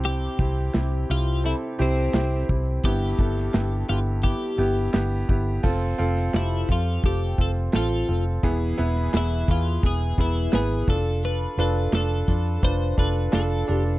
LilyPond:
<<
  \new Staff \with { instrumentName = "Clean electric guitar" } { \time 4/4 \key f \lydian \tempo 4 = 86 g'4. f'8 e'8 c'4 r8 | g'4. f'8 g'4 r4 | r4 e'8 f'8 g'8 a'8 f'8. r16 | r4 e'8 f'8 gis'8 e'8 gis'8 a'8 |
b'8 a'8 a'4 c''8 b'8 a'8. r16 | }
  \new Staff \with { instrumentName = "Upright piano" } { \time 4/4 \key f \lydian <c' e' g'>8 <c' e' g'>8 <c' e' g'>8 <c' e' g'>8 <c' e' a'>8 <c' e' g'>8 <c' e' g'>8 <c' e' g'>8 | <b e' g'>8 <b e' a'>8 <b e' g'>8 <b e' g'>8 <b e' g'>8 <b e' g'>8 <b e' g'>8 <b e' g'>8 | <c' f' a'>8 <c' f' a'>8 <c' f' g'>8 <c' f' a'>8 <c' f' a'>8 <c' f' a'>8 <c' f' a'>8 <c' f' a'>8 | <b e' gis'>8 <b e' b'>8 <b e' gis'>8 <b e' gis'>8 <b e' gis'>8 <b e' gis'>8 <b e' b'>8 <d' f' a'>8~ |
<d' f' a'>8 <d' f' b'>8 <d' f' a'>8 <d' f' a'>8 <d' f' b'>8 <d' f' a'>8 <d' f' a'>8 <d' f' a'>8 | }
  \new Staff \with { instrumentName = "Upright piano" } { \clef bass \time 4/4 \key f \lydian c4 r2. | g,4. r2 r8 | r1 | e4. r2 r8 |
r1 | }
  \new Staff \with { instrumentName = "Fingered electric bass" } { \clef bass \time 4/4 \key f \lydian c,8 c,8 c,8 c,8. r16 c,8 c,8 c,8 | g,,8 g,,8 g,,8 g,,8. r16 g,,8 g,,8 g,,8 | f,,8 f,,8 f,,8 f,8 f,,8 f,,8 a,,8 f,,8 | e,,8 e,,8 e,,8 e,8 e,,8 e,,8 gis,,8 f,,8~ |
f,,8 f,,8 f,,8 f,8 f,,8 f,,8 f,,8 f,,8 | }
  \new DrumStaff \with { instrumentName = "Drums" } \drummode { \time 4/4 r8 bd8 <hc sn>4 r4 <hc sn>8 bd8 | bd8 bd16 sn16 <hc sn>4 bd4 <hc sn>8 bd8 | <cymc bd>8. sn16 <hc sn>8 bd8 bd8 bd8 <hc sn>4 | <hh bd>16 hh16 hh16 <hh sn>16 <hc hh sn>8 <hh bd>16 hh16 <hh bd>8 <hh bd>16 hh16 <hc hh sn>16 hh16 <hh bd>16 hh16 |
hh16 hh16 hh16 hh16 <hc hh sn>16 hh16 <hh bd>16 hh16 <hh bd>8 <hh bd>16 hh16 <hc hh sn>16 hh16 hh16 hh16 | }
>>